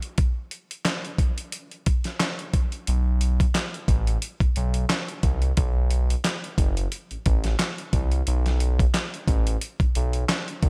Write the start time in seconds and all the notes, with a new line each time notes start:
0.02 closed hi-hat
0.18 kick, closed hi-hat
0.51 closed hi-hat
0.71 closed hi-hat
0.85 snare, clap, closed hi-hat
1.05 closed hi-hat
1.18 kick, closed hi-hat
1.38 closed hi-hat
1.52 closed hi-hat
1.71 closed hi-hat
1.86 kick, closed hi-hat
2.04 snare, closed hi-hat
2.20 snare, clap, closed hi-hat
2.39 closed hi-hat
2.54 kick, closed hi-hat
2.72 closed hi-hat
2.87 B1, closed hi-hat
3.21 closed hi-hat
3.40 kick, closed hi-hat
3.55 snare, clap, closed hi-hat
3.74 closed hi-hat
3.88 A1, kick, closed hi-hat
4.07 closed hi-hat
4.22 closed hi-hat
4.40 B1, kick, closed hi-hat
4.56 B1, closed hi-hat
4.74 closed hi-hat
4.90 snare, clap, closed hi-hat
5.08 closed hi-hat
5.23 C2, kick, closed hi-hat
5.42 closed hi-hat
5.57 B1, kick, closed hi-hat
5.91 closed hi-hat
6.10 closed hi-hat
6.24 snare, clap, closed hi-hat
6.44 closed hi-hat
6.58 F#1, kick, closed hi-hat
6.77 closed hi-hat
6.92 closed hi-hat
7.11 A1, closed hi-hat
7.26 A1, kick, closed hi-hat
7.44 snare, closed hi-hat
7.59 snare, clap, closed hi-hat
7.78 closed hi-hat
7.93 C2, kick, closed hi-hat
8.12 closed hi-hat
8.27 B1, closed hi-hat
8.46 snare, closed hi-hat
8.60 closed hi-hat
8.79 kick, closed hi-hat
8.94 snare, clap, closed hi-hat
9.14 closed hi-hat
9.28 A1, kick, closed hi-hat
9.47 closed hi-hat
9.61 closed hi-hat
9.80 B1, kick, closed hi-hat
9.95 B1, closed hi-hat
10.13 closed hi-hat
10.29 snare, clap, closed hi-hat
10.48 closed hi-hat
10.63 C2, kick, closed hi-hat